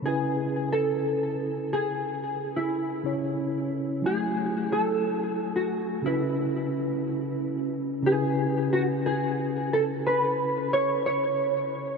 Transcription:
<<
  \new Staff \with { instrumentName = "Hollow-body jazz guitar" } { \time 4/4 \key cis \minor \tempo 4 = 60 \tuplet 3/2 { gis'4 a'8~ a'4 gis'8~ } gis'8 e'4 r8 | \tuplet 3/2 { gis'4 a'8~ } a'8 fis'8 e'4. r8 | \tuplet 3/2 { gis'4 fis'8 gis'4 a'8 b'4 cis''8 } cis''8. r16 | }
  \new Staff \with { instrumentName = "Tine electric piano" } { \time 4/4 \key cis \minor <cis cis' e' b'>2. <cis cis' e' cis''>4 | <fis a e' gis''>2 <cis cis' e' b'>2 | <cis cis' dis' e' b'>1 | }
>>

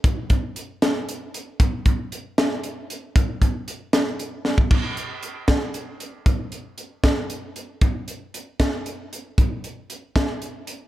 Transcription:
\new DrumStaff \with { instrumentName = "Drums" } \drummode { \time 6/8 \tempo 4. = 77 <hh bd>8 <hh bd>8 hh8 <hh sn>8 hh8 hh8 | <hh bd>8 <hh bd>8 hh8 <hh sn>8 hh8 hh8 | <hh bd>8 <hh bd>8 hh8 <hh sn>8 hh8 sn16 bd16 | <cymc bd>8 hh8 hh8 <hh bd sn>8 hh8 hh8 |
<hh bd>8 hh8 hh8 <hh bd sn>8 hh8 hh8 | <hh bd>8 hh8 hh8 <hh bd sn>8 hh8 hh8 | <hh bd>8 hh8 hh8 <hh bd sn>8 hh8 hh8 | }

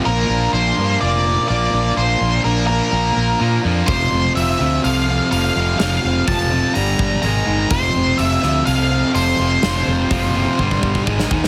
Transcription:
<<
  \new Staff \with { instrumentName = "Lead electric guitar" } { \time 4/4 \key f \mixolydian \tempo 4 = 125 bes'4 c''4 d''4 d''4 | c''4 bes'8 bes'2 r8 | c''4 e''4 f''4 f''4 | f''4 a''4 bes''4 bes''4 |
c''4 e''4 f''4 c''4~ | c''2. r4 | }
  \new Staff \with { instrumentName = "Clean electric guitar" } { \time 4/4 \key f \mixolydian bes8 d'8 d'8 bes8 f'8 bes8 f'8 d'8 | bes8 d'8 d'8 bes8 f'8 bes8 f'8 d'8 | f8 c'8 f'8 c'8 a'8 c'8 a'8 f'8 | f8 c'8 f'8 c'8 g8 g8 aes8 ees'8 |
f8 c'8 f'8 c'8 a'8 c'8 a'8 f'8 | f8 c'8 f'8 c'8 g8 g8 aes8 ees'8 | }
  \new Staff \with { instrumentName = "Distorted electric guitar" } { \clef bass \time 4/4 \key f \mixolydian <bes, f bes>4 <bes, f bes>8 <bes, f bes>8 <bes, f bes>4 <bes, f bes>8 <bes, f bes>8 | <bes, f bes>4 <bes, f bes>8 <bes, f bes>8 <bes, f bes>4 <bes, f bes>8 <bes, f bes>8 | <f, c f>4 <f, c f>8 <f, c f>8 <f, c f>4 <f, c f>8 <f, c f>8 | <f, c f>4 <f, c f>8 <f, c f>8 <g, d g>4 <aes, ees aes>8 <aes, ees aes>8 |
<f, c f>4 <f, c f>8 <f, c f>8 <f, c f>4 <f, c f>8 <f, c f>8 | <f, c f>4 <f, c f>8 <f, c f>8 <g, d g>4 <aes, ees aes>8 <aes, ees aes>8 | }
  \new Staff \with { instrumentName = "Fingered electric bass" } { \clef bass \time 4/4 \key f \mixolydian bes,,8 bes,,8 bes,,8 g,8 f,,4 bes,,8 bes,,8 | bes,,8 bes,,8 bes,,4 bes,,8 bes,,8 bes,8 f,8 | f,,8 f,,8 f,,8 d,8 c,4 f,,8 f,,8 | f,,8 f,,8 f,,4 g,,8 g,,8 aes,,8 g,,8 |
f,,8 f,,8 f,,8 d,8 c,4 f,,8 f,,8 | f,,8 f,,8 fis,,4 g,,8 g,,8 aes,,8 ees,8 | }
  \new DrumStaff \with { instrumentName = "Drums" } \drummode { \time 4/4 r4 r4 r4 r4 | r4 r4 r4 r4 | <hho bd>4 hho4 hho4 hho4 | <hho sn>4 <hho bd>4 hho8 bd8 hho4 |
<hho bd>4 hho8 sn8 hho4 hho4 | <hho sn>4 <hho bd>4 bd16 bd16 bd16 bd16 bd16 sn16 bd16 sn16 | }
>>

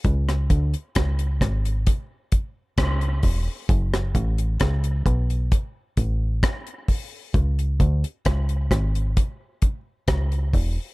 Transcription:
<<
  \new Staff \with { instrumentName = "Fingered electric bass" } { \clef bass \time 4/4 \key cis \phrygian \tempo 4 = 66 cis,8 d,16 r16 cis,8 gis,,8 r4 cis,8 e,,16 r16 | fis,,8 a,,8 cis,8 b,,8 r8 a,,8 r4 | cis,8 d,16 r16 cis,8 gis,,8 r4 cis,8 e,,16 r16 | }
  \new DrumStaff \with { instrumentName = "Drums" } \drummode { \time 4/4 <hh bd>16 <hh ss>16 <hh bd>16 hh16 <hh bd ss>16 hh16 <hh bd ss>16 hh16 <hh bd>8 <hh bd>8 <hh bd ss>16 hh16 <hho bd>8 | <hh bd>16 <hh ss>16 <hh bd>16 hh16 <hh bd ss>16 hh16 <hh bd>16 hh16 <hh bd>8 <hh bd>8 <hh bd ss>16 hh16 <hho bd>8 | <hh bd>16 hh16 <hh bd>16 hh16 <hh bd ss>16 hh16 <hh bd ss>16 hh16 <hh bd>8 <hh bd>8 <hh bd ss>16 hh16 <hho bd>8 | }
>>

